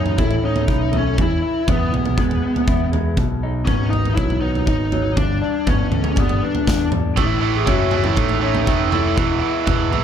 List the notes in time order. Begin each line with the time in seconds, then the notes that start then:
Already playing: F#2 A2 E3 C#4 D#4 E4
0.06 floor tom
0.18 A2 A3 E4, kick, floor tom
0.31 floor tom
0.42 C#4 D#4
0.56 floor tom
0.66 B1 E4, kick
0.92 A3, floor tom
0.97 C#4
1.17 E2 E3, kick, floor tom
1.21 E4
1.42 E4
1.67 E2 B3, kick, floor tom, mid tom
1.91 B1 E3, floor tom
2.05 floor tom
2.17 E2 G#3, kick, floor tom
2.31 floor tom
2.42 B3
2.56 floor tom
2.67 E2 E4, kick
2.92 G#3, floor tom
3.17 B1 B2, kick, floor tom
3.43 D#4
3.65 G#1 B3 C#4, kick, floor tom, mid tom
3.90 D#3 D#4, floor tom
4.05 floor tom
4.15 B1 F#3 E4, kick, floor tom
4.30 floor tom
4.41 B3 D#4
4.55 floor tom
4.67 G#1 D#4, kick
4.92 F#3, floor tom
5.16 G1 G2 D4, kick, floor tom
5.42 D4
5.67 G1 B3 C#4, kick, floor tom, mid tom
5.90 D2 D3, floor tom, mid tom
6.04 floor tom, mid tom
6.16 G1 G3 B3, kick, floor tom
6.29 floor tom
6.42 B3 D4
6.55 floor tom
6.67 E2 D4, kick, snare
6.92 G3, floor tom, mid tom
7.16 A1 A2 E3 A3 E4, kick, floor tom
7.40 A2 E3 A3 E4
7.57 G#4
7.65 F#1 A2 E3 A3 C#4 F#4, kick, floor tom, mid tom
7.91 A2 E3 A3, floor tom
8.04 E4, floor tom
8.15 A1 A2 E3 A3 D#4, kick, floor tom
8.29 floor tom
8.40 A2 E3 A3 C#4
8.55 floor tom
8.65 F1 A2 E3 A3 E4, kick
8.90 A2 E3 A3 E4, floor tom
9.14 E1 E2 B2 E3, kick, floor tom
9.39 E2 B2 E3 E4
9.65 E1 E2 B2 E3 B3, kick, floor tom, mid tom
9.91 B1 E2 B2 E3, floor tom